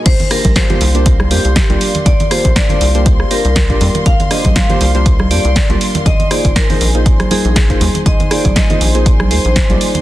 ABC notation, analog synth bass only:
X:1
M:4/4
L:1/16
Q:"Swing 16ths" 1/4=120
K:Cm
V:1 name="Analog synth bass" clef=bass
C,, z2 B,,, z2 C,,4 F,, C,, z C,, z2 | C,, z2 B,,, z2 C,,3 z2 C,,2 z F,, z | C,, z2 B,,, z2 C,,4 F,, C,, z C,, z2 | B,,, z2 A,,, z2 B,,,3 z2 B,,,2 z E,, z |
B,,, z2 A,,, z2 B,,,4 E,, B,,, z B,,, z2 |]